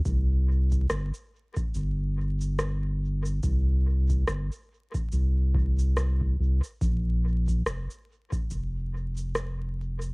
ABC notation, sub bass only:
X:1
M:4/4
L:1/8
Q:"Swing 16ths" 1/4=71
K:Bbmix
V:1 name="Sub bass" clef=bass
C,,2 G,,, z G,,,4 | C,,2 G,,, z C,,3 C,, | B,,,2 F,,, z F,,,4 |]